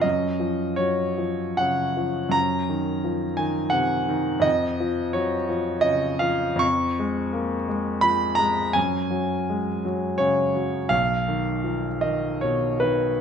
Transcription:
<<
  \new Staff \with { instrumentName = "Grand piano" } { \time 3/4 \key des \major \tempo 4 = 83 ees''4 des''4 ges''4 | bes''4. aes''8 ges''4 | ees''4 des''4 ees''8 f''8 | \key cis \mixolydian cis'''2 b''8 ais''8 |
gis''2 cis''4 | eis''4. dis''8 cis''8 b'8 | }
  \new Staff \with { instrumentName = "Grand piano" } { \clef bass \time 3/4 \key des \major ges,8 f8 ges8 f8 des8 f8 | ges,8 ees8 f8 ees8 c8 ees8 | f,8 f8 ges8 f8 des8 f8 | \key cis \mixolydian eis,8 gis8 ais8 gis8 eis8 gis8 |
fis,8 fis8 gis8 fis8 cis8 fis8 | b,,8 dis8 eis8 dis8 b,8 dis8 | }
>>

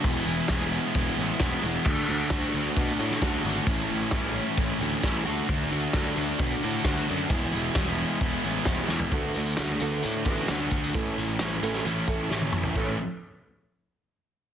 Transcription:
<<
  \new Staff \with { instrumentName = "Distorted electric guitar" } { \time 4/4 \key a \major \tempo 4 = 132 <e gis b e'>8 <gis b e'>8 <e gis b e'>4 <e gis b e'>8 <gis b e'>8 <e gis b e'>8 <gis b e'>8 | <d a d' fis'>8 <a d' fis'>8 <d a d' fis'>4 <d a d' fis'>8 <a d' fis'>8 <d a d' fis'>8 <a d' fis'>8 | <a, e a cis' e'>8 <a cis' e'>8 <e a cis' e'>4 <a, e a cis' e'>8 <a cis' e'>8 <e a cis' e'>8 <d a d' fis'>8 | <d a d' fis'>8 <a d' fis'>8 <d a d' fis'>4 <d a d' fis'>8 <a d' fis'>8 <d a d' fis'>8 <a d' fis'>8 |
<e gis b e'>8 <gis b e'>8 <e gis b e'>4 <e gis b e'>8 <gis b e'>8 <e gis b e'>8 <gis b e'>8 | <d a d' fis'>4 <d a d' fis'>8 <a d' fis'>8 <d a d' fis'>8 <a d' fis'>8 <d a d' fis'>4 | <a, e a cis' e'>4 <e a cis' e'>8 <a cis' e'>8 <e a cis' e'>8 <a cis' e'>8 <a, e a cis' e'>4 | <a, e a cis' e'>8 r2. r8 | }
  \new Staff \with { instrumentName = "Steel-string acoustic guitar" } { \clef bass \time 4/4 \key a \major r1 | r1 | r1 | r1 |
r1 | <d a b>8 <d a>8 <d a>8 <d a b>8 d8 <d a b>8 <d a>8 <d a>8 | <a, e a>8 <a, e>8 <a, e>8 <a, e a>8 <a, e>8 <a, e a>8 <a, e>8 <a, e>8 | <a, e a cis' e'>8 r2. r8 | }
  \new Staff \with { instrumentName = "Picked electric bass" } { \clef bass \time 4/4 \key a \major e,,8 e,,8 e,,4 e,,8 a,,8 e,,8 e,,8 | d,8 d,8 d,8 d,8 b,8 a,8 d,8 gis,,8 | a,,8 a,,8 a,,4 a,,8 d,8 a,,8 d,8 | d,8 d,8 d,8 d,8 b,8 a,8 d,8 fis,8 |
e,,8 e,,8 e,,4 e,,8 a,,8 e,,8 e,8 | d,8 d,8 d,8 d,8 a,8 a,,8 d,8 d,8 | a,,8 a,,8 a,,8 a,,8 a,,8 a,,8 a,,8 a,,8 | a,,8 r2. r8 | }
  \new DrumStaff \with { instrumentName = "Drums" } \drummode { \time 4/4 <hho bd>8 hho8 <hho bd sn>8 hho8 <hho bd>8 hho8 <hho bd sn>8 hho8 | <cymc bd>8 hho8 <hho bd sn>8 hho8 <hho bd>8 hho16 sn16 <hho bd sn>8 hho8 | <hho bd>8 hho8 <hho bd sn>8 hho8 <hho bd>8 hho8 <hho bd sn>8 hho8 | <hho bd>8 hho8 <hho bd sn>8 hho8 <hho bd>8 hho8 <hho bd sn>8 hho8 |
<hho bd>8 hho8 <hho bd sn>8 hho8 <hho bd>8 hho8 <hho bd sn>8 sn16 tomfh16 | <hh bd>8 hh16 hh16 <hh sn>8 hh8 hh8 <hh bd>16 hh16 <hh sn>8 <hh bd>16 hh16 | <hh bd>8 hh8 <hh sn>8 hh16 sn16 hh8 <hh bd>8 sn16 tommh16 toml16 tomfh16 | <cymc bd>4 r4 r4 r4 | }
>>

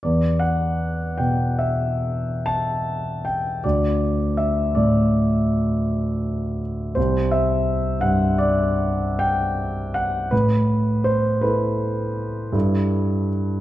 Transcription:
<<
  \new Staff \with { instrumentName = "Grand piano" } { \time 9/8 \key e \minor \tempo 4. = 53 d''8 fis''4 g''8 e''4 a''4 g''8 | d''4 e''8 d''2~ d''8 r8 | c''8 e''4 fis''8 d''4 g''4 fis''8 | b'4 c''8 b'2~ b'8 r8 | }
  \new Staff \with { instrumentName = "Grand piano" } { \clef bass \time 9/8 \key e \minor e,4. b,2. | d,4. a,2. | c,4. g,2. | a,4. <e' a'>4. <g, e' a'>4. | }
>>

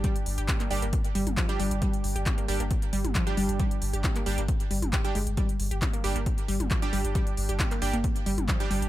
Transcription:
<<
  \new Staff \with { instrumentName = "Supersaw synth" } { \time 4/4 \key c \minor \tempo 4 = 135 <g d' g'>4. <g d' g'>16 r4. <g d' g'>8.~ | <g d' g'>4. <g d' g'>16 r4. <g d' g'>8.~ | <g d' g'>4. <g d' g'>16 r4. <g d' g'>16 r8 | r4. <g d' g'>16 r4. <g d' g'>8.~ |
<g d' g'>4. <g d' g'>16 r4. <g d' g'>8. | }
  \new Staff \with { instrumentName = "Synth arpeggio sound" } { \clef bass \time 4/4 \key c \minor g16 r8 g'16 r16 bes16 r16 bes16 r8 g16 r16 f16 r16 g16 r16 | g16 r8 g'16 r16 bes16 r16 bes16 r8 g16 r16 f16 r16 g16 r16 | g16 r8 g'16 r16 bes16 r16 bes16 r8 g16 r16 g'16 r16 aes16 r16 | g16 r8 g'16 r16 bes16 r16 bes16 r8 g16 r16 f16 r16 g16 r16 |
g16 r8 g'16 r16 bes16 r16 bes16 r8 g16 r16 f16 r16 g16 r16 | }
  \new Staff \with { instrumentName = "Sub bass" } { \clef bass \time 4/4 \key c \minor r8 g,,16 g,,16 r8 g,,16 g,,16 r8 g,,16 g,,16 r8 g,,16 g,,16 | r8 g,,16 g,,16 r8 g,,16 g,,16 r8 g,,16 g,,16 r8 g,,16 g,,16 | r8 g,,16 g,,16 r8 g,,16 g,,16 r8 g,,16 g,,16 r8 g,,16 g,,16 | r8 g,,16 g,,16 r8 g,,16 g,,16 r8 g,,16 g,,16 r8 g,,16 g,,16 |
r8 g,,16 g,,16 r8 g,,16 g,,16 r8 g,,16 g,,16 r8 g,,16 g,,16 | }
  \new DrumStaff \with { instrumentName = "Drums" } \drummode { \time 4/4 <hh bd>16 hh16 hho16 hh16 <hc hh bd toml>16 <hc hh>16 hho16 hh16 <hh bd>16 hh16 hho16 <hh toml>16 <hc hh bd>16 hh16 hho16 hh16 | <hh bd>16 hh16 hho16 hh16 <hc hh bd toml>16 hh16 hho16 hh16 <hh bd>16 hh16 hho16 <hh toml>16 <hc hh bd>16 hh16 hho16 hh16 | <hh bd>16 hh16 hho16 hh16 <hc hh bd toml>16 <hc hh>16 hho16 hh16 <hh bd>16 hh16 hho16 <hh toml>16 <hc hh bd>16 hh16 hho16 hh16 | <hh bd>16 hh16 hho16 hh16 <hc hh bd toml>16 hh16 hho16 hh16 <hh bd>16 hh16 hho16 <hh toml>16 <hc hh bd>16 hh16 hho16 hh16 |
<hh bd>16 hh16 hho16 hh16 <hc hh bd toml>16 <hc hh>16 hho16 hh16 <hh bd>16 hh16 hho16 <hh toml>16 <hc hh bd>16 hh16 hho16 hh16 | }
>>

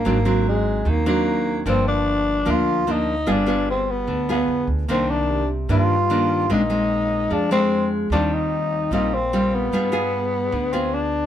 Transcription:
<<
  \new Staff \with { instrumentName = "Vibraphone" } { \time 4/4 \key g \phrygian \tempo 4 = 149 r1 | r1 | r1 | r4 g'2~ g'8 r8 |
r2 aes'2 | r1 | r1 | }
  \new Staff \with { instrumentName = "Tenor saxophone" } { \time 4/4 \key g \phrygian bes4 aes4 bes8 bes4. | c'8 d'4. f'4 ees'4 | d'4 c'8 b4 b4 r8 | c'8 d'4 r8 f'2 |
ees'2 d'8 c'4 r8 | d'8 ees'4. ees'8 c'4 ces'8~ | ces'2~ ces'8 c'8 d'4 | }
  \new Staff \with { instrumentName = "Nylon-string guitar" } { \time 4/4 \key g \phrygian << { <ges c' d'>8 <ges c' d'>2 <ges c' d'>4. | <f bes d'>2 <f bes d'>4 <f bes d'>8 r8 | <b f' aes'>8 <b f' aes'>2 <b f' aes'>4. | <ees bes d'>4. r8 <ees bes d'>8 r8 <ees bes d'>4 |
<aes c' d'>8 <aes c'>2 <aes c' d'>4. | <g c' f'>2 <g c' f'>8 r8 <g c' f'>4 | <b f' aes'>8 <b f' aes'>2 <b f' aes'>4. | } \\ { aes,2 ees2 | g,2 r2 | g2 d2 | c2 g,2 |
bes,2 f2 | ees2 bes,2 | g2 d2 | } >> }
  \new Staff \with { instrumentName = "Upright bass" } { \clef bass \time 4/4 \key g \phrygian aes,,2 ees,2 | g,,2 d,2 | g,,2 d,4 f,8 d,8 | c,2 g,2 |
bes,,2 f,2 | ees,2 bes,,2 | g,2 d,2 | }
>>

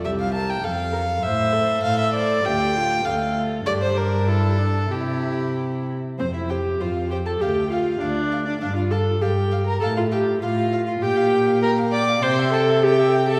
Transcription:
<<
  \new Staff \with { instrumentName = "Violin" } { \time 2/4 \key f \major \tempo 4 = 99 r8 bes'8 a'8 a'8 | r8 c''4 c''8 | f'8 f'4 f'8 | d'2 |
e'4. r8 | c''16 e''16 g''8 f''8 g''16 a''16 | g''8 f''8 d''8. d''16 | d''16 f''16 a''8 g''8. bes''16 |
a''16 f''16 g''8 f''8. f''16 | g''4 bes''8 d'''8 | c'''8 a''8 g''8. a''16 | }
  \new Staff \with { instrumentName = "Violin" } { \time 2/4 \key f \major e''16 f''16 a''16 g''16 f''4 | e''4 f''16 e''16 d''8 | g''4 f''8 r8 | d''16 c''16 bes'8 a'4 |
g'4. r8 | c''8 c''8 c''8 c''8 | f''8 f''8 f''8 f''8 | f''8 f''8 f''8 f''8 |
f''8 f''8 f''8 f''8 | g''16 f''16 g''16 f''16 g''16 f''16 g''16 f''16 | g''16 e''16 g''16 e''16 g''16 e''16 g''16 e''16 | }
  \new Staff \with { instrumentName = "Viola" } { \time 2/4 \key f \major g'4 a'8 bes'8 | c''8 a'4. | g'8 f'8 a'4 | g'4 e'8 d'8 |
e'4. r8 | c'16 e'16 g'8 f'8 g'16 a'16 | g'8 f'8 d'8. d'16 | d'16 f'16 a'8 g'8. bes'16 |
a'16 f'16 g'8 f'8. f'16 | g'4 bes'8 d''8 | c''8 a'8 g'8. a'16 | }
  \new Staff \with { instrumentName = "Cello" } { \clef bass \time 2/4 \key f \major c,4 f,4 | a,4 a,4 | d,4 d,4 | g,2 |
c4. r8 | f,4 f,4 | d,4 d,4 | g,4 g,4 |
a,4 a,4 | bes,2 | c2 | }
>>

